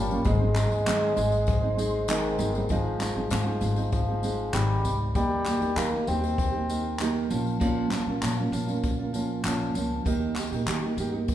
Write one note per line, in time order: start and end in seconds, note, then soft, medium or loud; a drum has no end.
0.00 0.20 G1 medium
0.00 0.29 G3 medium
0.00 0.10 A#3 medium
0.00 0.23 A#4 medium
0.00 0.23 F5 medium
0.00 0.23 C#6 medium
0.09 0.25 A#3 soft
0.09 0.26 C#4 soft
0.09 0.25 F4 medium
0.09 tambourine soft
0.24 0.63 G#1 loud
0.24 0.40 G#2 medium
0.24 0.40 D#3 medium
0.24 0.41 G#3 medium
0.24 2.10 G#3 loud
0.24 0.40 C4 medium
0.24 0.39 D#4 medium
0.24 0.38 G#4 medium
0.24 2.69 G#4 medium
0.24 2.69 C5 medium
0.24 2.69 D#5 medium
0.24 2.68 C6 medium
0.24 kick loud
0.24 tambourine medium
0.39 0.54 G#3 soft
0.39 0.56 C4 soft
0.39 0.56 D#4 medium
0.39 0.55 G#4 medium
0.55 0.85 G#3 medium
0.55 0.86 C4 medium
0.55 0.86 D#4 medium
0.55 0.86 G#4 medium
0.55 clap medium
0.55 tambourine medium
0.71 0.86 D#2 medium
0.71 tambourine soft
0.86 1.17 G#2 medium
0.86 1.11 G#2 loud
0.86 1.17 D#3 medium
0.86 1.14 G#3 medium
0.86 1.15 C4 medium
0.86 1.16 D#4 medium
0.86 1.17 G#4 medium
0.86 clap loud
0.86 tambourine medium
1.15 2.36 G#1 loud
1.15 1.62 G#3 medium
1.15 1.63 C4 medium
1.15 1.62 D#4 medium
1.15 1.60 G#4 medium
1.15 tambourine soft
1.15 tambourine medium
1.32 tambourine soft
1.47 kick loud
1.47 tambourine soft
1.62 1.75 G#3 soft
1.62 1.77 C4 medium
1.62 1.78 D#4 medium
1.62 1.78 G#4 medium
1.77 2.07 G#3 medium
1.77 2.08 C4 medium
1.77 2.08 D#4 medium
1.77 2.09 G#4 medium
1.77 tambourine medium
2.08 2.39 G#2 medium
2.08 2.39 D#3 medium
2.08 2.73 D#3 loud
2.08 2.37 G#3 medium
2.08 2.38 C4 loud
2.08 2.40 D#4 medium
2.08 2.40 G#4 medium
2.08 clap loud
2.08 tambourine medium
2.38 2.64 G1 medium
2.38 2.54 G#3 medium
2.38 2.55 C4 medium
2.38 tambourine medium
2.40 2.54 D#4 medium
2.40 2.53 G#4 medium
2.40 tambourine medium
2.54 2.69 G#3 soft
2.54 2.69 C4 medium
2.54 2.70 D#4 medium
2.54 2.70 G#4 medium
2.54 tambourine soft
2.69 3.08 G#1 medium
2.69 3.00 G#2 medium
2.69 3.01 D#3 medium
2.69 3.30 F3 medium
2.69 2.99 G#3 medium
2.69 3.00 C4 medium
2.69 3.00 D#4 medium
2.69 3.02 G#4 medium
2.69 kick medium
2.69 tambourine soft
3.00 3.16 G#3 medium
3.00 3.16 C4 medium
3.00 3.15 D#4 medium
3.00 3.14 G#4 medium
3.00 clap medium
3.00 tambourine soft
3.00 tambourine medium
3.15 3.29 G#1 medium
3.15 3.30 G#3 soft
3.15 3.30 C4 soft
3.15 3.31 D#4 soft
3.15 3.31 G#4 medium
3.30 3.56 G#2 loud
3.30 3.46 G#2 medium
3.30 3.47 D#3 medium
3.30 3.88 F3 medium
3.30 3.47 G#3 medium
3.30 3.46 C4 medium
3.30 3.45 D#4 medium
3.30 3.45 G#4 medium
3.30 clap loud
3.30 tambourine medium
3.46 3.59 G#3 soft
3.46 3.61 C4 soft
3.46 3.61 D#4 medium
3.46 3.62 G#4 medium
3.60 4.50 G#1 medium
3.60 3.77 G#3 medium
3.60 3.77 C4 medium
3.60 3.76 D#4 medium
3.60 3.75 G#4 medium
3.60 tambourine soft
3.60 tambourine medium
3.76 4.09 G#3 soft
3.76 4.09 C4 soft
3.76 4.08 D#4 medium
3.76 4.07 G#4 medium
3.76 tambourine soft
3.92 4.55 F3 loud
3.92 kick loud
3.92 tambourine soft
4.08 4.21 G#3 soft
4.08 4.22 C4 soft
4.08 4.23 D#4 medium
4.08 4.24 G#4 soft
4.22 4.54 G#3 medium
4.22 4.53 C4 medium
4.22 4.53 D#4 medium
4.22 4.55 G#4 medium
4.22 tambourine soft
4.22 tambourine medium
4.53 4.86 G#1 loud
4.53 4.84 G#2 medium
4.53 4.84 D#3 medium
4.53 4.99 G3 loud
4.53 4.83 C4 medium
4.53 4.85 D#4 medium
4.53 clap loud
4.53 tambourine medium
4.84 5.15 C#2 medium
4.84 5.14 C4 medium
4.84 5.14 D#4 medium
4.84 tambourine soft
4.84 tambourine medium
5.14 5.53 D#2 loud
5.14 5.43 D#3 medium
5.14 5.79 G3 loud
5.14 5.45 A#3 medium
5.14 5.46 D#4 medium
5.14 5.47 G4 medium
5.14 kick loud
5.14 tambourine soft
5.45 5.61 D#3 medium
5.45 5.61 A#3 medium
5.45 5.60 D#4 medium
5.45 5.59 G4 medium
5.45 clap loud
5.45 tambourine medium
5.60 5.74 D#2 medium
5.60 5.75 A#3 soft
5.60 5.76 D#4 soft
5.60 5.76 G4 medium
5.60 tambourine soft
5.76 5.92 D#3 medium
5.76 6.02 D#3 loud
5.76 5.92 A#3 medium
5.76 6.10 A#3 loud
5.76 5.92 D#4 medium
5.76 5.90 G4 medium
5.76 clap loud
5.76 tambourine medium
5.92 6.07 A#3 soft
5.92 6.08 D#4 soft
5.92 6.07 G4 medium
6.07 7.26 D#2 loud
6.07 6.22 D#3 medium
6.07 6.23 A#3 medium
6.07 7.30 C4 loud
6.07 6.21 D#4 medium
6.07 6.20 G4 medium
6.07 tambourine medium
6.07 tambourine soft
6.21 6.54 A#3 soft
6.21 6.53 D#4 soft
6.21 6.51 G4 medium
6.21 tambourine soft
6.38 kick loud
6.38 tambourine soft
6.52 6.67 A#3 soft
6.52 6.68 D#4 soft
6.52 6.68 G4 medium
6.68 6.98 D#3 medium
6.68 6.99 A#3 medium
6.68 7.00 D#4 medium
6.68 7.00 G4 medium
6.68 tambourine medium
6.68 tambourine soft
6.99 7.29 D#3 medium
6.99 7.29 A#3 loud
6.99 7.31 D#4 medium
6.99 7.31 G4 medium
6.99 clap loud
6.99 tambourine medium
7.29 7.93 A#1 medium
7.29 7.59 F3 medium
7.29 7.59 A#3 medium
7.29 7.60 C#4 medium
7.29 7.60 F4 medium
7.29 tambourine medium
7.47 tambourine soft
7.60 7.91 A#2 medium
7.60 7.89 F3 medium
7.60 7.90 A#3 medium
7.60 7.91 C#4 medium
7.60 7.92 F4 medium
7.60 kick loud
7.60 tambourine medium
7.90 8.06 F3 medium
7.90 8.07 A#3 medium
7.90 8.07 C#4 medium
7.90 8.05 F4 medium
7.90 clap medium
7.90 tambourine medium
8.06 8.19 A#1 medium
8.06 8.22 A#3 medium
8.06 8.22 C#4 medium
8.06 8.22 F4 medium
8.22 8.37 A#2 medium
8.22 8.47 A#2 loud
8.22 8.38 F3 medium
8.22 8.38 A#3 medium
8.22 8.37 C#4 medium
8.22 8.35 F4 loud
8.22 clap loud
8.22 tambourine medium
8.37 8.51 A#3 soft
8.37 8.52 C#4 medium
8.37 8.52 F4 medium
8.52 9.40 A#2 loud
8.52 8.68 F3 medium
8.52 8.68 A#3 medium
8.52 8.68 C#4 medium
8.52 8.66 F4 medium
8.52 tambourine medium
8.52 tambourine soft
8.67 9.00 A#3 medium
8.67 8.99 C#4 medium
8.67 8.98 F4 medium
8.67 tambourine soft
8.84 kick loud
8.84 tambourine soft
8.99 9.12 A#3 soft
8.99 9.14 C#4 soft
8.99 9.14 F4 medium
9.13 9.43 F3 medium
9.13 9.44 A#3 medium
9.13 9.44 C#4 medium
9.13 9.44 F4 medium
9.13 tambourine soft
9.13 tambourine medium
9.43 9.70 A#1 medium
9.43 9.75 A#2 medium
9.43 9.73 F3 medium
9.43 9.75 A#3 medium
9.43 9.76 C#4 medium
9.43 9.76 F4 loud
9.43 clap loud
9.43 tambourine medium
9.75 10.00 C#2 medium
9.75 10.04 F3 medium
9.75 10.04 A#3 medium
9.75 10.06 C#4 medium
9.75 10.07 F4 medium
9.75 tambourine medium
9.75 tambourine soft
10.05 10.44 D#2 medium
10.05 10.35 D#3 medium
10.05 10.36 A#3 medium
10.05 10.37 D#4 loud
10.05 10.37 G4 medium
10.05 kick loud
10.05 tambourine medium
10.36 10.52 D#3 medium
10.36 10.52 A#3 medium
10.36 10.52 D#4 medium
10.36 10.50 G4 medium
10.36 clap medium
10.36 tambourine medium
10.51 10.64 A#2 medium
10.51 10.66 A#3 soft
10.51 10.67 D#4 medium
10.51 10.67 G4 medium
10.51 tambourine soft
10.66 10.92 D#3 loud
10.66 10.82 D#3 medium
10.66 10.83 A#3 medium
10.66 10.82 D#4 medium
10.66 10.81 G4 medium
10.66 clap loud
10.66 tambourine medium
10.82 10.97 A#3 soft
10.82 10.98 D#4 medium
10.82 10.98 G4 medium
10.97 11.35 G2 medium
10.97 11.13 D#3 medium
10.97 11.13 A#3 medium
10.97 11.12 D#4 medium
10.97 11.11 G4 medium
10.97 tambourine soft
10.97 tambourine medium
11.12 11.35 A#3 soft
11.12 11.35 D#4 medium
11.12 11.35 G4 medium
11.28 kick loud
11.28 tambourine soft